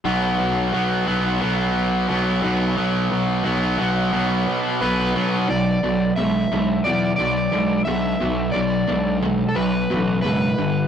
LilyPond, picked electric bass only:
\new Staff \with { instrumentName = "Picked electric bass" } { \clef bass \time 4/4 \key b \minor \tempo 4 = 88 b,,8 b,,8 b,,8 b,,8 b,,4 b,,8 b,,8 | b,,8 b,,8 b,,8 b,,8 b,,8 b,8 b,,8 b,,8 | b,,8 b,,8 b,,8 b,,8 e,8 b,,8 b,,8 b,,8 | b,,8 b,,8 b,,4 b,,8 a,,8 fis,,8 g,,8 | }